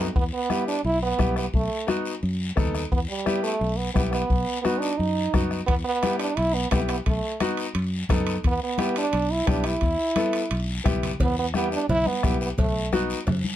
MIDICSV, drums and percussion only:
0, 0, Header, 1, 3, 480
1, 0, Start_track
1, 0, Key_signature, 1, "minor"
1, 0, Tempo, 345026
1, 223, Time_signature, 4, 2, 24, 8
1, 18863, End_track
2, 0, Start_track
2, 0, Title_t, "Two-headed folk drums"
2, 217, Note_on_c, 9, 36, 84
2, 356, Note_off_c, 9, 36, 0
2, 694, Note_on_c, 9, 37, 78
2, 833, Note_off_c, 9, 37, 0
2, 1658, Note_on_c, 9, 36, 85
2, 1658, Note_on_c, 9, 37, 75
2, 1797, Note_off_c, 9, 37, 0
2, 1798, Note_off_c, 9, 36, 0
2, 1893, Note_on_c, 9, 37, 68
2, 2032, Note_off_c, 9, 37, 0
2, 2138, Note_on_c, 9, 36, 77
2, 2277, Note_off_c, 9, 36, 0
2, 2620, Note_on_c, 9, 37, 77
2, 2759, Note_off_c, 9, 37, 0
2, 3573, Note_on_c, 9, 37, 84
2, 3580, Note_on_c, 9, 36, 80
2, 3713, Note_off_c, 9, 37, 0
2, 3719, Note_off_c, 9, 36, 0
2, 3819, Note_on_c, 9, 37, 59
2, 3959, Note_off_c, 9, 37, 0
2, 4059, Note_on_c, 9, 36, 70
2, 4198, Note_off_c, 9, 36, 0
2, 4538, Note_on_c, 9, 37, 80
2, 4677, Note_off_c, 9, 37, 0
2, 5504, Note_on_c, 9, 36, 78
2, 5507, Note_on_c, 9, 37, 71
2, 5643, Note_off_c, 9, 36, 0
2, 5646, Note_off_c, 9, 37, 0
2, 5741, Note_on_c, 9, 37, 71
2, 5880, Note_off_c, 9, 37, 0
2, 5983, Note_on_c, 9, 36, 77
2, 6122, Note_off_c, 9, 36, 0
2, 6465, Note_on_c, 9, 37, 71
2, 6604, Note_off_c, 9, 37, 0
2, 7424, Note_on_c, 9, 36, 76
2, 7425, Note_on_c, 9, 37, 83
2, 7564, Note_off_c, 9, 36, 0
2, 7564, Note_off_c, 9, 37, 0
2, 7662, Note_on_c, 9, 37, 59
2, 7801, Note_off_c, 9, 37, 0
2, 7905, Note_on_c, 9, 36, 78
2, 8044, Note_off_c, 9, 36, 0
2, 8384, Note_on_c, 9, 37, 68
2, 8524, Note_off_c, 9, 37, 0
2, 9348, Note_on_c, 9, 36, 79
2, 9350, Note_on_c, 9, 37, 83
2, 9487, Note_off_c, 9, 36, 0
2, 9490, Note_off_c, 9, 37, 0
2, 9589, Note_on_c, 9, 37, 63
2, 9728, Note_off_c, 9, 37, 0
2, 9827, Note_on_c, 9, 36, 76
2, 9967, Note_off_c, 9, 36, 0
2, 10302, Note_on_c, 9, 37, 75
2, 10441, Note_off_c, 9, 37, 0
2, 11266, Note_on_c, 9, 36, 82
2, 11266, Note_on_c, 9, 37, 88
2, 11405, Note_off_c, 9, 36, 0
2, 11405, Note_off_c, 9, 37, 0
2, 11746, Note_on_c, 9, 36, 80
2, 11885, Note_off_c, 9, 36, 0
2, 12226, Note_on_c, 9, 37, 73
2, 12365, Note_off_c, 9, 37, 0
2, 13178, Note_on_c, 9, 37, 83
2, 13182, Note_on_c, 9, 36, 79
2, 13318, Note_off_c, 9, 37, 0
2, 13321, Note_off_c, 9, 36, 0
2, 13414, Note_on_c, 9, 37, 68
2, 13553, Note_off_c, 9, 37, 0
2, 13660, Note_on_c, 9, 36, 76
2, 13799, Note_off_c, 9, 36, 0
2, 14141, Note_on_c, 9, 37, 67
2, 14280, Note_off_c, 9, 37, 0
2, 15101, Note_on_c, 9, 36, 77
2, 15102, Note_on_c, 9, 37, 82
2, 15240, Note_off_c, 9, 36, 0
2, 15241, Note_off_c, 9, 37, 0
2, 15582, Note_on_c, 9, 36, 82
2, 15721, Note_off_c, 9, 36, 0
2, 16052, Note_on_c, 9, 37, 77
2, 16191, Note_off_c, 9, 37, 0
2, 17018, Note_on_c, 9, 37, 82
2, 17025, Note_on_c, 9, 36, 78
2, 17157, Note_off_c, 9, 37, 0
2, 17164, Note_off_c, 9, 36, 0
2, 17506, Note_on_c, 9, 36, 86
2, 17645, Note_off_c, 9, 36, 0
2, 17985, Note_on_c, 9, 37, 76
2, 18125, Note_off_c, 9, 37, 0
2, 18472, Note_on_c, 9, 37, 69
2, 18612, Note_off_c, 9, 37, 0
2, 18863, End_track
3, 0, Start_track
3, 0, Title_t, "Drums"
3, 227, Note_on_c, 9, 63, 31
3, 230, Note_on_c, 9, 74, 62
3, 366, Note_off_c, 9, 63, 0
3, 369, Note_off_c, 9, 74, 0
3, 696, Note_on_c, 9, 63, 84
3, 703, Note_on_c, 9, 73, 63
3, 835, Note_off_c, 9, 63, 0
3, 842, Note_off_c, 9, 73, 0
3, 949, Note_on_c, 9, 73, 64
3, 1088, Note_off_c, 9, 73, 0
3, 1173, Note_on_c, 9, 63, 33
3, 1175, Note_on_c, 9, 74, 57
3, 1313, Note_off_c, 9, 63, 0
3, 1314, Note_off_c, 9, 74, 0
3, 1651, Note_on_c, 9, 73, 61
3, 1658, Note_on_c, 9, 63, 78
3, 1790, Note_off_c, 9, 73, 0
3, 1797, Note_off_c, 9, 63, 0
3, 1901, Note_on_c, 9, 73, 64
3, 2040, Note_off_c, 9, 73, 0
3, 2135, Note_on_c, 9, 74, 62
3, 2144, Note_on_c, 9, 63, 30
3, 2275, Note_off_c, 9, 74, 0
3, 2283, Note_off_c, 9, 63, 0
3, 2612, Note_on_c, 9, 73, 55
3, 2622, Note_on_c, 9, 63, 79
3, 2752, Note_off_c, 9, 73, 0
3, 2761, Note_off_c, 9, 63, 0
3, 2857, Note_on_c, 9, 73, 70
3, 2996, Note_off_c, 9, 73, 0
3, 3099, Note_on_c, 9, 74, 68
3, 3105, Note_on_c, 9, 63, 35
3, 3238, Note_off_c, 9, 74, 0
3, 3244, Note_off_c, 9, 63, 0
3, 3580, Note_on_c, 9, 63, 85
3, 3580, Note_on_c, 9, 64, 80
3, 3582, Note_on_c, 9, 73, 58
3, 3719, Note_off_c, 9, 63, 0
3, 3719, Note_off_c, 9, 64, 0
3, 3721, Note_off_c, 9, 73, 0
3, 3822, Note_on_c, 9, 73, 68
3, 3961, Note_off_c, 9, 73, 0
3, 4068, Note_on_c, 9, 74, 70
3, 4070, Note_on_c, 9, 63, 33
3, 4207, Note_off_c, 9, 74, 0
3, 4209, Note_off_c, 9, 63, 0
3, 4543, Note_on_c, 9, 73, 59
3, 4545, Note_on_c, 9, 63, 79
3, 4682, Note_off_c, 9, 73, 0
3, 4684, Note_off_c, 9, 63, 0
3, 4786, Note_on_c, 9, 73, 73
3, 4925, Note_off_c, 9, 73, 0
3, 5024, Note_on_c, 9, 63, 36
3, 5028, Note_on_c, 9, 74, 66
3, 5163, Note_off_c, 9, 63, 0
3, 5167, Note_off_c, 9, 74, 0
3, 5499, Note_on_c, 9, 63, 90
3, 5508, Note_on_c, 9, 73, 69
3, 5638, Note_off_c, 9, 63, 0
3, 5647, Note_off_c, 9, 73, 0
3, 5742, Note_on_c, 9, 73, 60
3, 5881, Note_off_c, 9, 73, 0
3, 5986, Note_on_c, 9, 63, 32
3, 5986, Note_on_c, 9, 74, 69
3, 6125, Note_off_c, 9, 63, 0
3, 6125, Note_off_c, 9, 74, 0
3, 6465, Note_on_c, 9, 73, 62
3, 6473, Note_on_c, 9, 63, 73
3, 6604, Note_off_c, 9, 73, 0
3, 6612, Note_off_c, 9, 63, 0
3, 6706, Note_on_c, 9, 73, 77
3, 6846, Note_off_c, 9, 73, 0
3, 6952, Note_on_c, 9, 63, 34
3, 6958, Note_on_c, 9, 74, 62
3, 7091, Note_off_c, 9, 63, 0
3, 7097, Note_off_c, 9, 74, 0
3, 7429, Note_on_c, 9, 73, 65
3, 7434, Note_on_c, 9, 63, 71
3, 7434, Note_on_c, 9, 64, 76
3, 7568, Note_off_c, 9, 73, 0
3, 7573, Note_off_c, 9, 63, 0
3, 7573, Note_off_c, 9, 64, 0
3, 7665, Note_on_c, 9, 73, 58
3, 7804, Note_off_c, 9, 73, 0
3, 7904, Note_on_c, 9, 65, 66
3, 7908, Note_on_c, 9, 74, 68
3, 7909, Note_on_c, 9, 63, 30
3, 8043, Note_off_c, 9, 65, 0
3, 8047, Note_off_c, 9, 74, 0
3, 8048, Note_off_c, 9, 63, 0
3, 8384, Note_on_c, 9, 65, 61
3, 8385, Note_on_c, 9, 73, 64
3, 8391, Note_on_c, 9, 63, 86
3, 8523, Note_off_c, 9, 65, 0
3, 8524, Note_off_c, 9, 73, 0
3, 8530, Note_off_c, 9, 63, 0
3, 8618, Note_on_c, 9, 65, 65
3, 8624, Note_on_c, 9, 73, 71
3, 8757, Note_off_c, 9, 65, 0
3, 8763, Note_off_c, 9, 73, 0
3, 8863, Note_on_c, 9, 65, 67
3, 8863, Note_on_c, 9, 74, 73
3, 8876, Note_on_c, 9, 63, 35
3, 9002, Note_off_c, 9, 65, 0
3, 9002, Note_off_c, 9, 74, 0
3, 9015, Note_off_c, 9, 63, 0
3, 9338, Note_on_c, 9, 65, 70
3, 9338, Note_on_c, 9, 66, 68
3, 9346, Note_on_c, 9, 73, 72
3, 9347, Note_on_c, 9, 63, 77
3, 9478, Note_off_c, 9, 65, 0
3, 9478, Note_off_c, 9, 66, 0
3, 9486, Note_off_c, 9, 63, 0
3, 9486, Note_off_c, 9, 73, 0
3, 9577, Note_on_c, 9, 73, 71
3, 9583, Note_on_c, 9, 65, 68
3, 9716, Note_off_c, 9, 73, 0
3, 9722, Note_off_c, 9, 65, 0
3, 9823, Note_on_c, 9, 63, 31
3, 9824, Note_on_c, 9, 74, 60
3, 9825, Note_on_c, 9, 65, 65
3, 9963, Note_off_c, 9, 63, 0
3, 9963, Note_off_c, 9, 74, 0
3, 9964, Note_off_c, 9, 65, 0
3, 10301, Note_on_c, 9, 65, 75
3, 10306, Note_on_c, 9, 63, 82
3, 10308, Note_on_c, 9, 73, 65
3, 10440, Note_off_c, 9, 65, 0
3, 10445, Note_off_c, 9, 63, 0
3, 10447, Note_off_c, 9, 73, 0
3, 10538, Note_on_c, 9, 65, 59
3, 10557, Note_on_c, 9, 73, 70
3, 10677, Note_off_c, 9, 65, 0
3, 10697, Note_off_c, 9, 73, 0
3, 10778, Note_on_c, 9, 63, 35
3, 10779, Note_on_c, 9, 65, 69
3, 10799, Note_on_c, 9, 74, 64
3, 10917, Note_off_c, 9, 63, 0
3, 10919, Note_off_c, 9, 65, 0
3, 10938, Note_off_c, 9, 74, 0
3, 11257, Note_on_c, 9, 63, 74
3, 11257, Note_on_c, 9, 64, 89
3, 11271, Note_on_c, 9, 65, 62
3, 11271, Note_on_c, 9, 66, 64
3, 11273, Note_on_c, 9, 73, 67
3, 11396, Note_off_c, 9, 63, 0
3, 11396, Note_off_c, 9, 64, 0
3, 11410, Note_off_c, 9, 65, 0
3, 11410, Note_off_c, 9, 66, 0
3, 11413, Note_off_c, 9, 73, 0
3, 11499, Note_on_c, 9, 65, 70
3, 11515, Note_on_c, 9, 73, 61
3, 11638, Note_off_c, 9, 65, 0
3, 11654, Note_off_c, 9, 73, 0
3, 11736, Note_on_c, 9, 63, 36
3, 11745, Note_on_c, 9, 65, 54
3, 11763, Note_on_c, 9, 74, 62
3, 11875, Note_off_c, 9, 63, 0
3, 11884, Note_off_c, 9, 65, 0
3, 11903, Note_off_c, 9, 74, 0
3, 12213, Note_on_c, 9, 63, 83
3, 12223, Note_on_c, 9, 65, 66
3, 12244, Note_on_c, 9, 73, 59
3, 12352, Note_off_c, 9, 63, 0
3, 12362, Note_off_c, 9, 65, 0
3, 12383, Note_off_c, 9, 73, 0
3, 12464, Note_on_c, 9, 65, 66
3, 12479, Note_on_c, 9, 73, 72
3, 12603, Note_off_c, 9, 65, 0
3, 12618, Note_off_c, 9, 73, 0
3, 12699, Note_on_c, 9, 65, 73
3, 12713, Note_on_c, 9, 63, 37
3, 12720, Note_on_c, 9, 74, 69
3, 12838, Note_off_c, 9, 65, 0
3, 12852, Note_off_c, 9, 63, 0
3, 12859, Note_off_c, 9, 74, 0
3, 13178, Note_on_c, 9, 65, 72
3, 13186, Note_on_c, 9, 63, 83
3, 13197, Note_on_c, 9, 73, 60
3, 13318, Note_off_c, 9, 65, 0
3, 13325, Note_off_c, 9, 63, 0
3, 13337, Note_off_c, 9, 73, 0
3, 13408, Note_on_c, 9, 65, 68
3, 13438, Note_on_c, 9, 73, 64
3, 13547, Note_off_c, 9, 65, 0
3, 13577, Note_off_c, 9, 73, 0
3, 13648, Note_on_c, 9, 65, 54
3, 13672, Note_on_c, 9, 63, 33
3, 13680, Note_on_c, 9, 74, 68
3, 13787, Note_off_c, 9, 65, 0
3, 13811, Note_off_c, 9, 63, 0
3, 13819, Note_off_c, 9, 74, 0
3, 14132, Note_on_c, 9, 63, 86
3, 14132, Note_on_c, 9, 65, 72
3, 14147, Note_on_c, 9, 73, 57
3, 14271, Note_off_c, 9, 63, 0
3, 14271, Note_off_c, 9, 65, 0
3, 14286, Note_off_c, 9, 73, 0
3, 14373, Note_on_c, 9, 65, 68
3, 14399, Note_on_c, 9, 73, 65
3, 14512, Note_off_c, 9, 65, 0
3, 14538, Note_off_c, 9, 73, 0
3, 14619, Note_on_c, 9, 65, 75
3, 14633, Note_on_c, 9, 74, 74
3, 14758, Note_off_c, 9, 65, 0
3, 14773, Note_off_c, 9, 74, 0
3, 15102, Note_on_c, 9, 73, 66
3, 15105, Note_on_c, 9, 63, 74
3, 15105, Note_on_c, 9, 64, 79
3, 15107, Note_on_c, 9, 65, 64
3, 15241, Note_off_c, 9, 73, 0
3, 15244, Note_off_c, 9, 63, 0
3, 15244, Note_off_c, 9, 64, 0
3, 15246, Note_off_c, 9, 65, 0
3, 15350, Note_on_c, 9, 64, 71
3, 15350, Note_on_c, 9, 65, 74
3, 15352, Note_on_c, 9, 73, 64
3, 15489, Note_off_c, 9, 64, 0
3, 15489, Note_off_c, 9, 65, 0
3, 15492, Note_off_c, 9, 73, 0
3, 15580, Note_on_c, 9, 64, 75
3, 15587, Note_on_c, 9, 56, 106
3, 15590, Note_on_c, 9, 74, 65
3, 15720, Note_off_c, 9, 64, 0
3, 15727, Note_off_c, 9, 56, 0
3, 15729, Note_off_c, 9, 74, 0
3, 16061, Note_on_c, 9, 63, 78
3, 16068, Note_on_c, 9, 73, 62
3, 16200, Note_off_c, 9, 63, 0
3, 16207, Note_off_c, 9, 73, 0
3, 16307, Note_on_c, 9, 73, 71
3, 16446, Note_off_c, 9, 73, 0
3, 16546, Note_on_c, 9, 64, 84
3, 16549, Note_on_c, 9, 74, 66
3, 16550, Note_on_c, 9, 56, 93
3, 16685, Note_off_c, 9, 64, 0
3, 16688, Note_off_c, 9, 74, 0
3, 16689, Note_off_c, 9, 56, 0
3, 16778, Note_on_c, 9, 63, 71
3, 16917, Note_off_c, 9, 63, 0
3, 17026, Note_on_c, 9, 73, 69
3, 17027, Note_on_c, 9, 63, 83
3, 17027, Note_on_c, 9, 64, 75
3, 17035, Note_on_c, 9, 66, 65
3, 17165, Note_off_c, 9, 73, 0
3, 17167, Note_off_c, 9, 63, 0
3, 17167, Note_off_c, 9, 64, 0
3, 17174, Note_off_c, 9, 66, 0
3, 17265, Note_on_c, 9, 73, 72
3, 17404, Note_off_c, 9, 73, 0
3, 17499, Note_on_c, 9, 64, 69
3, 17506, Note_on_c, 9, 74, 74
3, 17509, Note_on_c, 9, 56, 91
3, 17638, Note_off_c, 9, 64, 0
3, 17645, Note_off_c, 9, 74, 0
3, 17648, Note_off_c, 9, 56, 0
3, 17983, Note_on_c, 9, 73, 66
3, 17991, Note_on_c, 9, 63, 87
3, 18122, Note_off_c, 9, 73, 0
3, 18130, Note_off_c, 9, 63, 0
3, 18225, Note_on_c, 9, 73, 76
3, 18364, Note_off_c, 9, 73, 0
3, 18459, Note_on_c, 9, 56, 79
3, 18459, Note_on_c, 9, 74, 75
3, 18469, Note_on_c, 9, 64, 97
3, 18598, Note_off_c, 9, 56, 0
3, 18598, Note_off_c, 9, 74, 0
3, 18609, Note_off_c, 9, 64, 0
3, 18702, Note_on_c, 9, 63, 77
3, 18841, Note_off_c, 9, 63, 0
3, 18863, End_track
0, 0, End_of_file